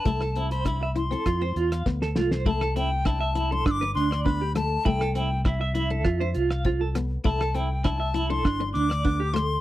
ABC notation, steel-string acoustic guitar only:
X:1
M:4/4
L:1/16
Q:1/4=100
K:C
V:1 name="Steel-string acoustic guitar"
A,2 C2 D2 E C2 C2 z B,2 A,2 | A,2 C2 D2 E D2 D2 z B,2 A,2 | A,2 C2 z2 E D2 D2 z C2 B,2 | A,2 C2 D2 E D2 D2 z B,2 A,2 |]